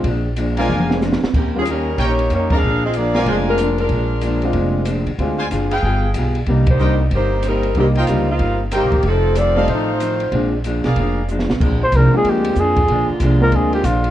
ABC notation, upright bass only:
X:1
M:4/4
L:1/8
Q:"Swing" 1/4=187
K:Bbmix
V:1 name="Upright bass" clef=bass
B,,,4 F,,,3 z | E,,4 B,,,2 F,,2 | B,,,4 F,,,4 | B,,,4 F,,,3 E,, |
D,,2 _G,,,2 =G,,,2 =B,,,2 | C,,4 G,,,4 | C,,2 _D,,2 G,,,2- (3G,,, B,,, G,,, | F,,,4 =A,,,4 |
B,,,3 _C,, F,,,3 =A,,, | B,,,2 C,, z D,,2 F,,2 | B,,, z C,,2 D,,2 B,,,2 |]